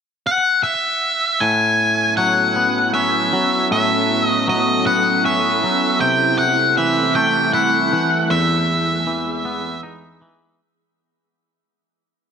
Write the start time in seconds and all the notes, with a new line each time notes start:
0.27 F#5
0.63 E5
1.40 A2 F#3 B3 C#4 E4 A4 G#5
2.17 F#3 F#5
2.56 B3
2.94 C#4 E5
3.33 F#3
3.71 A2 E5
4.27 D#5
4.48 F#3 D#5
4.86 B3 F#5
5.25 C#4 E5
5.63 F#3
6.01 C3 G3 A3 C4 G5
6.38 F#5
6.77 E3 E5
7.15 A3 G5
7.53 E4 F#5
7.93 E3
8.31 E2 E3 G#3 B3 G#4 E5
9.07 E3
9.45 B3
9.83 D#4
10.21 E3